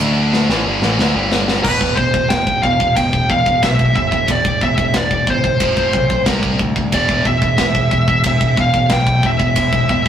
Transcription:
0.00 picked electric bass D2, distorted electric guitar D3 A3 D4
0.33 snare
0.49 picked electric bass A1, distorted electric guitar A2 E3, snare
0.66 picked electric bass G1, distorted electric guitar G2 D3
0.81 picked electric bass A1, distorted electric guitar A2 E3, snare
0.98 picked electric bass D2, distorted electric guitar D3 A3, snare
1.14 picked electric bass G1, distorted electric guitar G2 D3 G3
1.32 snare
1.48 snare
1.63 picked electric bass E1, distorted electric guitar E2 B2 E3, lead electric guitar B4, kick, crash
1.81 kick
1.97 picked electric bass E1, distorted electric guitar E2 B2, lead electric guitar C5, kick
2.14 distorted electric guitar E2 B2, kick
2.29 picked electric bass E1, distorted electric guitar E2 B2, lead electric guitar G5, kick, snare, ride bell
2.47 kick
2.62 picked electric bass E1, distorted electric guitar E2 B2, lead electric guitar F5, kick
2.80 distorted electric guitar E2 B2, kick
2.96 picked electric bass E1, distorted electric guitar E2 B2, lead electric guitar G5, kick, ride bell
3.13 kick
3.29 picked electric bass E1, distorted electric guitar E2 B2, lead electric guitar F5, kick
3.46 distorted electric guitar E2 B2, kick
3.62 picked electric bass B1, distorted electric guitar E2 B2, lead electric guitar E5, kick, snare, ride bell
3.79 kick
3.95 picked electric bass E1, distorted electric guitar E2 B2, lead electric guitar E5, kick
4.11 distorted electric guitar E2 B2, kick
4.27 picked electric bass E1, distorted electric guitar E2 B2, kick, ride bell
4.31 lead electric guitar D5
4.45 kick
4.61 picked electric bass E1, distorted electric guitar E2 B2, lead electric guitar E5, kick
4.77 distorted electric guitar E2 B2, kick
4.94 picked electric bass E1, distorted electric guitar E2 B2, lead electric guitar D5, kick, snare, ride bell
5.11 kick
5.27 picked electric bass G1, distorted electric guitar E2 B2, lead electric guitar C5, kick
5.44 distorted electric guitar E2 B2, kick
5.60 picked electric bass F1, distorted electric guitar F2 C3 F3, kick, ride bell
5.77 kick
5.93 picked electric bass B1, distorted electric guitar F2 C3, kick
6.10 distorted electric guitar F2 C3, kick
6.26 picked electric bass C2, distorted electric guitar C3 G3 C4, kick, snare, ride bell
6.43 kick
6.59 picked electric bass D2, distorted electric guitar C3 G3, kick
6.76 distorted electric guitar C3 G3, kick
6.92 picked electric bass E1, distorted electric guitar E2 B2 E3, lead electric guitar D5, kick, ride bell
7.09 kick
7.25 picked electric bass E1, distorted electric guitar E2 B2, lead electric guitar E5, kick
7.42 distorted electric guitar E2 B2, kick
7.58 picked electric bass E1, distorted electric guitar E2 B2, kick, snare, ride bell
7.75 kick
7.91 picked electric bass E1, distorted electric guitar E2 B2, kick
8.08 distorted electric guitar E2 B2, kick
8.24 picked electric bass E1, distorted electric guitar E2 B2, lead electric guitar E5, kick, ride bell
8.41 kick
8.56 picked electric bass E1, distorted electric guitar E2 B2, kick
8.60 lead electric guitar F5
8.73 distorted electric guitar E2 B2, kick
8.90 picked electric bass B1, distorted electric guitar E2 B2, lead electric guitar G5, kick, snare, ride bell
9.07 kick
9.23 picked electric bass E1, distorted electric guitar E2 B2, lead electric guitar E5, kick
9.39 distorted electric guitar E2 B2, kick
9.55 picked electric bass E1, distorted electric guitar E2 B2, kick, ride bell
9.73 kick
9.89 picked electric bass E1, distorted electric guitar E2 B2, lead electric guitar E5, kick

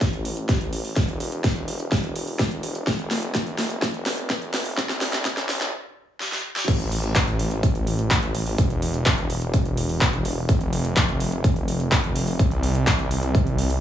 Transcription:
Already playing: detuned saw bass A1
0.01 kick, snare, closed hi-hat
0.13 closed hi-hat
0.25 open hi-hat
0.37 closed hi-hat
0.49 kick, snare, closed hi-hat
0.61 closed hi-hat
0.73 open hi-hat
0.85 open hi-hat
0.96 detuned saw bass E1, kick, snare, closed hi-hat
1.08 closed hi-hat
1.20 open hi-hat
1.32 closed hi-hat
1.44 kick, snare, closed hi-hat
1.56 closed hi-hat
1.68 open hi-hat
1.80 closed hi-hat
1.92 kick, snare, closed hi-hat
2.04 closed hi-hat
2.16 open hi-hat
2.27 open hi-hat
2.39 kick, snare, closed hi-hat
2.51 closed hi-hat
2.63 open hi-hat
2.75 closed hi-hat
2.87 detuned saw bass F1, kick, snare, closed hi-hat
2.99 closed hi-hat
3.11 snare, open hi-hat
3.23 closed hi-hat
3.35 kick, snare, closed hi-hat
3.47 closed hi-hat
3.58 snare, open hi-hat
3.70 closed hi-hat
3.82 kick, snare, closed hi-hat
3.94 closed hi-hat
4.06 snare, open hi-hat
4.18 closed hi-hat
4.30 kick, snare, closed hi-hat
4.42 closed hi-hat
4.54 snare, open hi-hat
4.66 open hi-hat
4.77 detuned saw bass C2, kick, snare, closed hi-hat
4.89 snare, closed hi-hat
5.01 snare, open hi-hat
5.13 snare, closed hi-hat
5.25 kick, snare, closed hi-hat
5.37 snare, closed hi-hat
5.49 snare, open hi-hat
5.61 snare, closed hi-hat
6.20 snare
6.32 snare
6.56 snare
6.68 detuned saw bass A1, kick, closed hi-hat, crash
6.80 closed hi-hat
6.92 open hi-hat
7.04 closed hi-hat
7.15 kick, clap, closed hi-hat
7.28 closed hi-hat
7.39 open hi-hat
7.51 closed hi-hat
7.63 kick, closed hi-hat
7.75 closed hi-hat
7.87 open hi-hat
7.99 closed hi-hat
8.11 kick, clap, closed hi-hat
8.23 closed hi-hat
8.35 open hi-hat
8.46 open hi-hat
8.58 detuned saw bass E1, kick, closed hi-hat
8.70 closed hi-hat
8.82 open hi-hat
8.94 closed hi-hat
9.06 kick, clap, closed hi-hat
9.18 closed hi-hat
9.30 open hi-hat
9.42 closed hi-hat
9.54 kick, closed hi-hat
9.66 closed hi-hat
9.77 open hi-hat
9.89 open hi-hat
10.01 kick, clap, closed hi-hat
10.13 closed hi-hat
10.25 open hi-hat
10.49 detuned saw bass F1, kick, closed hi-hat
10.61 closed hi-hat
10.73 open hi-hat
10.85 closed hi-hat
10.96 kick, clap, closed hi-hat
11.09 closed hi-hat
11.20 open hi-hat
11.32 closed hi-hat
11.44 kick, closed hi-hat
11.56 closed hi-hat
11.68 open hi-hat
11.80 closed hi-hat
11.92 kick, clap, closed hi-hat
12.04 closed hi-hat
12.16 open hi-hat
12.28 open hi-hat
12.39 detuned saw bass C2, kick, closed hi-hat
12.51 closed hi-hat
12.63 open hi-hat
12.75 closed hi-hat
12.87 kick, clap, closed hi-hat
12.99 closed hi-hat
13.11 open hi-hat
13.23 closed hi-hat
13.35 kick, closed hi-hat
13.47 closed hi-hat
13.58 open hi-hat
13.70 open hi-hat

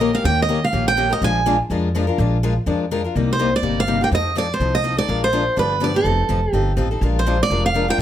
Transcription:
Already playing: upright bass A#1, steel-string acoustic guitar D#5
0.00 steel-string acoustic guitar D#3 A#3 C#4 G4 A#4
0.14 steel-string acoustic guitar C#4 G4 F5
0.24 upright bass D#2, steel-string acoustic guitar D#3 A#3 C#4 G4 A#4 G5
0.42 steel-string acoustic guitar D#5
0.49 steel-string acoustic guitar D#3 A#3 C#4 G4 A#4
0.64 steel-string acoustic guitar F5
0.73 upright bass A#1, steel-string acoustic guitar D#3 A#3 C#4 G4 A#4
0.88 steel-string acoustic guitar G5
0.97 steel-string acoustic guitar D#3 A#3 C#4 G4 A#4
1.10 steel-string acoustic guitar C#4 G4 A#4 D#5
1.22 upright bass A#1, steel-string acoustic guitar F3 G#3 D4 F4 A#4 G#5
1.46 steel-string acoustic guitar F3 G#3 D4 F4 A#4
1.70 upright bass F2, steel-string acoustic guitar F3 G#3 D4 F4 A#4
1.95 steel-string acoustic guitar F3 G#3 D4 F4 A#4
2.07 steel-string acoustic guitar D4 F4 A#4
2.18 upright bass A#1, steel-string acoustic guitar F3 G#3 D4 F4 A#4
2.43 steel-string acoustic guitar F3 G#3 D4 F4 A#4
2.66 upright bass F2, steel-string acoustic guitar F3 G#3 D4 F4 A#4
2.91 steel-string acoustic guitar F3 G#3 D4 F4 A#4
3.04 steel-string acoustic guitar D4 F4 A#4
3.15 upright bass C2, steel-string acoustic guitar C3 G3 A#3 D#4 G4
3.33 steel-string acoustic guitar C5
3.39 steel-string acoustic guitar C3 G3 A#3 D#4 G4
3.56 steel-string acoustic guitar D5
3.63 upright bass G1, steel-string acoustic guitar C3 G3 A#3 D#4 G4
3.80 steel-string acoustic guitar F5
3.87 steel-string acoustic guitar C3 G3 A#3 D#4 G4
4.01 steel-string acoustic guitar A#3 D#4 G4 G5
4.11 upright bass F2, steel-string acoustic guitar F3 C4 D#4 A4 D#5
4.35 steel-string acoustic guitar F3 C4 D#4 A4 D5
4.54 steel-string acoustic guitar C5
4.59 upright bass C2, steel-string acoustic guitar F3 C4 D#4 A4
4.75 steel-string acoustic guitar D#5
4.84 steel-string acoustic guitar F3 C4 D#4 A4
4.97 steel-string acoustic guitar C4 D#4 A4 D5
5.08 upright bass A#1, steel-string acoustic guitar F3 G#3 D4 F4 A#4
5.24 steel-string acoustic guitar C5
5.33 steel-string acoustic guitar F3 G#3 D4 F4 A#4
5.56 upright bass G1, steel-string acoustic guitar D3 F3 B3 D4 G4 B4
5.80 steel-string acoustic guitar D3 F3 B3 D4 G4 D5
5.94 steel-string acoustic guitar B3 D4 G4 A4
6.04 upright bass F1, steel-string acoustic guitar F3 C4 D#4 A4
6.29 upright bass F1, steel-string acoustic guitar F3 C4 D#4 A4
6.53 upright bass G1, steel-string acoustic guitar F3 C4 D#4 G4 A4
6.77 upright bass A1, steel-string acoustic guitar F3 C4 D#4 A4
6.91 steel-string acoustic guitar C4 D#4 A4
7.01 upright bass A#1, steel-string acoustic guitar F3 G#3 D4 F4 A#4
7.19 steel-string acoustic guitar C5
7.26 steel-string acoustic guitar F3 G#3 D4 F4 A#4
7.43 steel-string acoustic guitar D5
7.50 upright bass F1, steel-string acoustic guitar F3 G#3 D4 F4 A#4
7.66 steel-string acoustic guitar F5
7.74 steel-string acoustic guitar F3 G#3 D4 F4 A#4
7.88 steel-string acoustic guitar D4 F4 A#4 G5
7.98 upright bass A#1

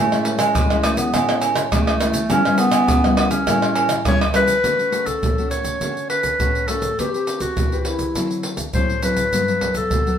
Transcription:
Already playing: nylon-string guitar A2, clarinet A3
0.12 nylon-string guitar G#3 C#4 E4, pandeiro, tamborim, shaker
0.25 pandeiro
0.38 nylon-string guitar G#3 C#4 E4, clarinet G#3, pandeiro, tamborim, low agogo, shaker
0.55 nylon-string guitar E3, pandeiro, high agogo, shaker, surdo
0.70 nylon-string guitar G#3 C#4 E4, pandeiro, tamborim, shaker
0.84 clarinet A3, pandeiro, tamborim, high agogo, shaker
0.97 clarinet B3, pandeiro, shaker
1.14 nylon-string guitar A2 G#3 C#4 E4, pandeiro, tamborim, low agogo, shaker, surdo
1.29 pandeiro, tamborim, shaker
1.41 pandeiro, low agogo, shaker
1.56 pandeiro, tamborim, shaker
1.72 nylon-string guitar E3 G#3 C#4 E4, clarinet A3, pandeiro, tamborim, high agogo, shaker, surdo
1.87 pandeiro, tamborim, high agogo, shaker
2.00 nylon-string guitar G#3 C#4 E4, pandeiro, tamborim, shaker
2.14 pandeiro, shaker
2.30 nylon-string guitar C#3 G3 B3 E4, clarinet C#4, pandeiro, low agogo, shaker, surdo
2.45 nylon-string guitar G3 B3 E4, pandeiro, tamborim, shaker
2.58 clarinet B3, pandeiro, shaker
2.72 pandeiro, tamborim, low agogo, shaker
2.88 nylon-string guitar C#3, pandeiro, high agogo, shaker, surdo
3.04 nylon-string guitar G3 B3 E4, pandeiro, tamborim, shaker
3.17 clarinet B3, pandeiro, tamborim, high agogo
3.31 clarinet C#4, pandeiro, shaker
3.46 nylon-string guitar A2 G3 C#4 E4, pandeiro, tamborim, low agogo, shaker, surdo
3.62 pandeiro, tamborim, shaker
3.75 pandeiro, low agogo
3.89 pandeiro, tamborim, shaker
4.04 nylon-string guitar E3 G3 C#4 E4, clarinet C#5, pandeiro, tamborim, high agogo, shaker, surdo
4.21 pandeiro, tamborim, high agogo, shaker
4.33 nylon-string guitar G3 C#4 E4, clarinet B4, pandeiro, tamborim, shaker
4.48 pandeiro, shaker
4.63 nylon-string guitar D3 A3 C#4 F#4, pandeiro, shaker, surdo
4.78 nylon-string guitar A3 C#4 F#4, pandeiro, shaker
4.91 nylon-string guitar A3 C#4 F#4, pandeiro, shaker
5.06 clarinet A4, pandeiro, shaker, surdo
5.22 nylon-string guitar A2, pandeiro, shaker, surdo
5.38 nylon-string guitar A3 C#4 F#4, pandeiro, shaker
5.51 clarinet C#5, pandeiro, shaker
5.65 pandeiro, shaker, surdo
5.81 nylon-string guitar D3 A3 C#4 F#4, pandeiro, shaker, surdo
5.97 pandeiro, shaker
6.10 clarinet B4, pandeiro
6.23 pandeiro, shaker, surdo
6.40 nylon-string guitar A2 A3 C#4 F#4, pandeiro, shaker, surdo
6.55 pandeiro, shaker
6.68 nylon-string guitar A3 C#4 F#4, clarinet A4, pandeiro, shaker
6.82 pandeiro, shaker, surdo
6.98 nylon-string guitar A3 C4 G4 B4, clarinet G4, pandeiro, shaker, surdo
7.14 nylon-string guitar C4 G4 B4, pandeiro, shaker
7.27 pandeiro, shaker
7.40 clarinet F#4, pandeiro, shaker, surdo
7.57 nylon-string guitar E3, pandeiro, shaker, surdo
7.72 nylon-string guitar C4 G4 B4, pandeiro, shaker
7.81 clarinet F#4, pandeiro
7.87 clarinet E4
7.99 pandeiro, shaker, surdo
8.15 nylon-string guitar D3 F#3 C4 E4, pandeiro, shaker, surdo
8.31 pandeiro, shaker
8.43 pandeiro
8.57 pandeiro, shaker, surdo
8.74 nylon-string guitar A2 F#3 C4 E4, clarinet C5, pandeiro, shaker, surdo
8.89 pandeiro, shaker
9.02 nylon-string guitar F#3 C4 E4, clarinet B4, pandeiro, shaker
9.16 pandeiro, shaker, surdo
9.32 nylon-string guitar G2 F#3 B3 D4, pandeiro, shaker, surdo
9.48 nylon-string guitar F#3 B3 D4, pandeiro, shaker
9.60 nylon-string guitar F#3 B3 D4, pandeiro, surdo
9.75 clarinet A4, pandeiro, shaker, surdo
9.91 nylon-string guitar D3, pandeiro, shaker, surdo
10.06 nylon-string guitar F#3 B3 D4, pandeiro, shaker

